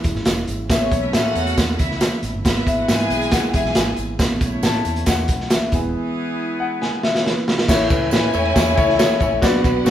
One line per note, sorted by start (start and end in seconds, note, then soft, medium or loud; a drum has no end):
0.00 4.16 E3 medium
0.00 0.45 G#3 medium
0.00 0.68 G#3 medium
0.00 2.42 C#4 medium
0.00 0.45 E4 medium
0.00 0.68 E4 medium
0.00 0.45 B4 loud
0.00 closed hi-hat medium
0.04 0.14 E1 medium
0.04 kick medium
0.04 tambourine soft
0.15 0.24 G#1 medium
0.15 snare soft
0.25 0.44 E1 medium
0.25 snare loud
0.25 closed hi-hat loud
0.25 tambourine medium
0.48 0.67 G#1 medium
0.48 closed hi-hat medium
0.48 tambourine medium
0.69 0.88 A1 loud
0.69 0.99 C#3 medium
0.69 2.20 E3 medium
0.69 2.43 A3 medium
0.69 0.99 A3 medium
0.69 4.16 B3 medium
0.69 1.00 B3 medium
0.69 1.00 C#4 medium
0.69 2.20 C#4 medium
0.69 2.20 A4 medium
0.69 1.00 C#5 loud
0.69 0.93 E5 loud
0.69 kick loud
0.69 snare loud
0.69 closed hi-hat loud
0.69 tambourine medium
0.91 1.10 B1 loud
0.91 1.15 C#5 medium
0.91 kick medium
0.91 closed hi-hat medium
0.91 tambourine medium
1.01 1.10 E4 medium
1.01 1.11 E5 medium
1.12 1.32 A2 loud
1.12 1.75 F#4 loud
1.12 1.37 E5 loud
1.12 1.75 F#5 loud
1.12 snare loud
1.12 closed hi-hat medium
1.12 tambourine medium
1.35 1.54 E2 medium
1.35 1.55 C#3 soft
1.35 1.55 A3 soft
1.35 1.56 B3 medium
1.35 1.56 C#5 medium
1.35 closed hi-hat medium
1.35 tambourine soft
1.47 closed hi-hat medium
1.57 1.76 E2 loud
1.57 kick medium
1.57 snare medium
1.57 closed hi-hat medium
1.57 tambourine medium
1.79 2.07 C#2 medium
1.79 2.20 E4 medium
1.79 2.21 E5 medium
1.79 kick medium
1.79 closed hi-hat medium
1.79 tambourine soft
1.91 snare soft
2.01 snare loud
2.01 closed hi-hat loud
2.01 tambourine medium
2.23 2.32 A1 medium
2.23 closed hi-hat medium
2.23 tambourine medium
2.34 2.43 G1 medium
2.44 2.63 G#1 loud
2.44 3.53 E3 soft
2.44 3.95 G#3 medium
2.44 3.54 G#3 soft
2.44 4.18 G#3 medium
2.44 3.54 B3 medium
2.44 3.94 E4 medium
2.44 2.76 E4 loud
2.44 4.18 E4 medium
2.44 3.94 B4 medium
2.44 2.76 E5 loud
2.44 kick loud
2.44 snare loud
2.44 closed hi-hat loud
2.44 tambourine medium
2.67 2.85 G#1 loud
2.67 3.29 E5 medium
2.67 kick medium
2.67 closed hi-hat medium
2.67 tambourine medium
2.79 2.87 F#4 medium
2.79 2.87 F#5 medium
2.88 3.07 G#2 loud
2.88 3.50 G#4 loud
2.88 3.50 G#5 loud
2.88 snare loud
2.88 closed hi-hat medium
2.88 tambourine medium
2.98 closed hi-hat medium
3.10 3.37 B1 medium
3.10 closed hi-hat medium
3.10 tambourine medium
3.21 closed hi-hat medium
3.31 3.47 F#5 medium
3.31 kick medium
3.31 snare loud
3.31 closed hi-hat medium
3.31 tambourine medium
3.49 3.54 F#5 medium
3.53 3.63 G#1 medium
3.53 3.74 E3 soft
3.53 3.74 G#3 soft
3.53 3.75 B3 soft
3.53 3.95 G#4 medium
3.53 3.75 E5 medium
3.53 3.95 G#5 loud
3.53 kick medium
3.53 closed hi-hat medium
3.53 tambourine soft
3.64 3.74 B1 loud
3.64 snare soft
3.75 3.94 G#1 medium
3.75 4.17 G#5 medium
3.75 snare loud
3.75 closed hi-hat loud
3.75 tambourine loud
3.96 4.16 G#1 medium
3.96 closed hi-hat medium
3.96 tambourine medium
4.19 4.38 A1 loud
4.19 5.68 C#3 medium
4.19 7.65 E3 medium
4.19 5.48 A3 medium
4.19 5.71 A3 medium
4.19 5.68 A3 medium
4.19 7.65 B3 medium
4.19 5.69 B3 medium
4.19 5.71 C#4 medium
4.19 5.48 E4 medium
4.19 5.47 C#5 medium
4.19 kick loud
4.19 snare loud
4.19 closed hi-hat medium
4.19 tambourine medium
4.41 4.60 B1 medium
4.41 kick medium
4.41 closed hi-hat medium
4.41 tambourine medium
4.63 4.81 A2 loud
4.63 5.04 A5 loud
4.63 snare loud
4.63 closed hi-hat medium
4.63 tambourine medium
4.74 closed hi-hat soft
4.85 5.04 E2 medium
4.85 closed hi-hat medium
4.85 tambourine medium
4.96 closed hi-hat medium
5.06 5.25 E2 medium
5.06 5.53 F#5 loud
5.06 kick medium
5.06 snare loud
5.06 closed hi-hat loud
5.06 tambourine loud
5.28 5.56 B1 medium
5.28 kick medium
5.28 closed hi-hat medium
5.28 tambourine medium
5.40 snare soft
5.50 5.72 E5 medium
5.50 snare loud
5.50 closed hi-hat loud
5.50 tambourine loud
5.72 5.82 E1 loud
5.72 7.43 E3 medium
5.72 7.44 E3 medium
5.72 7.67 G#3 medium
5.72 7.43 G#3 medium
5.72 7.44 B3 medium
5.72 7.43 B3 medium
5.72 7.67 E4 medium
5.72 7.44 G#4 medium
5.72 5.79 G#5 medium
5.72 kick loud
5.72 closed hi-hat medium
5.72 tambourine medium
5.83 5.92 D#1 loud
6.60 6.82 F#5 loud
6.81 7.02 G#5 loud
6.81 snare medium
7.03 7.18 E5 loud
7.03 snare medium
7.15 7.25 C#5 medium
7.15 snare medium
7.26 7.66 B4 medium
7.26 snare medium
7.48 snare medium
7.58 snare medium
7.68 7.87 A1 loud
7.68 8.30 A2 medium
7.68 9.41 E3 medium
7.68 9.41 A3 medium
7.68 9.41 C#4 medium
7.68 9.41 E4 medium
7.68 9.39 E4 loud
7.68 7.86 E4 loud
7.68 7.86 A4 medium
7.68 9.39 C#5 loud
7.68 7.87 C#5 loud
7.68 9.39 G#5 loud
7.68 kick loud
7.68 snare loud
7.68 crash loud
7.68 tambourine loud
7.89 8.09 C#2 medium
7.89 8.07 E4 medium
7.89 8.07 A4 medium
7.89 8.08 B4 loud
7.89 kick loud
7.89 ride medium
7.89 tambourine medium
8.11 8.30 A2 loud
8.11 8.29 E4 medium
8.11 8.29 A4 medium
8.11 8.30 B4 loud
8.11 snare loud
8.11 ride medium
8.11 tambourine medium
8.23 ride soft
8.32 8.52 E2 loud
8.32 8.50 E4 medium
8.32 8.51 A4 medium
8.32 8.51 C#5 loud
8.32 ride medium
8.32 tambourine medium
8.45 ride soft
8.54 8.72 E4 loud
8.54 8.73 A4 medium
8.54 8.73 C#5 loud
8.54 kick medium
8.54 snare loud
8.54 ride medium
8.54 tambourine medium
8.76 9.05 C#2 medium
8.76 8.94 E4 loud
8.76 8.94 A4 loud
8.76 8.95 C#5 loud
8.76 kick medium
8.76 ride medium
8.76 tambourine medium
8.89 snare soft
8.97 9.15 E4 loud
8.97 9.16 A4 loud
8.97 9.16 C#5 loud
8.97 snare loud
8.97 ride loud
8.97 tambourine loud
9.19 9.30 A1 medium
9.19 9.37 E4 medium
9.19 9.38 A4 medium
9.19 9.38 C#5 loud
9.19 kick medium
9.19 ride soft
9.19 tambourine medium
9.32 9.41 A#1 medium
9.42 9.61 B1 loud
9.42 9.90 B2 medium
9.42 9.90 F#3 medium
9.42 9.90 B3 medium
9.42 9.90 D4 loud
9.42 9.90 D4 medium
9.42 9.59 F#4 loud
9.42 9.90 F#4 medium
9.42 9.90 B4 loud
9.42 9.60 B4 loud
9.42 9.60 D5 loud
9.42 9.90 F#5 loud
9.42 kick loud
9.42 snare loud
9.42 ride medium
9.42 tambourine medium
9.62 9.83 B1 medium
9.62 9.80 F#4 medium
9.62 9.81 B4 medium
9.62 9.82 D5 medium
9.62 kick loud
9.62 ride medium
9.62 tambourine medium
9.85 9.90 B2 loud
9.85 9.90 F#4 loud
9.85 9.90 B4 medium
9.85 9.90 D5 medium
9.85 snare loud
9.85 ride medium
9.85 tambourine medium